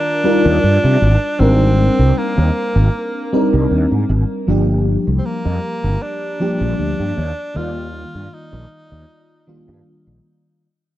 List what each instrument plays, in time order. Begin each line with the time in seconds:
Already playing: fm electric piano D#3 G3 D4 F4 A#4, tenor saxophone D4
0.24 fm electric piano G3 D4 D#4 F4 A#4
0.45 fretless electric bass D#2
0.63 fretless electric bass G2
0.84 fretless electric bass C3
1.02 fretless electric bass G#1
1.39 fretless electric bass G#1, fm electric piano G3 C4 D4 D#4 A#4, tenor saxophone C4
1.99 fretless electric bass C2
2.18 tenor saxophone A#3
2.37 fretless electric bass D#2
2.75 fretless electric bass G#1
3.32 fm electric piano G3 C4 D4 D#4 A#4
3.53 fretless electric bass C2
3.71 fretless electric bass D#2
3.91 fretless electric bass G#2
4.09 fretless electric bass G#1
4.47 fretless electric bass G1, fm electric piano F3 G3 A#3 D4 G4
5.07 fretless electric bass C2
5.18 tenor saxophone C4
5.25 tenor saxophone A#3
5.45 fretless electric bass F2
5.84 fretless electric bass G1
6.02 tenor saxophone D4
6.40 fm electric piano F3 G3 A#3 D4 G4
6.61 fretless electric bass A#1
6.79 fretless electric bass D2
6.99 fretless electric bass G2
7.17 fretless electric bass D#2
7.54 fretless electric bass D#2, fm electric piano D#3 G3 A#3 F4 D5, tenor saxophone F4
8.15 fretless electric bass G2
8.34 tenor saxophone D#4
8.53 fretless electric bass A#1
8.92 fretless electric bass D#2
9.47 fm electric piano D#3 G3 A#3 D4 F4
9.68 fretless electric bass G2
10.07 fretless electric bass A#1